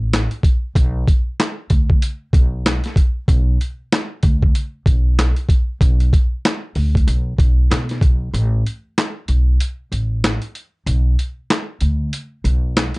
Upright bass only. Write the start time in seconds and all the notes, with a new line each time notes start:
Already playing: A1
0.76 B1
1.71 D2
2.33 B1
3.28 B1
4.23 D2
4.86 B1
5.81 B1
6.76 D2
7.07 B1
7.39 B1
7.71 B2
8.02 B1
8.34 A1
9.28 B1
9.92 A1
10.86 B1
11.81 D2
12.44 B1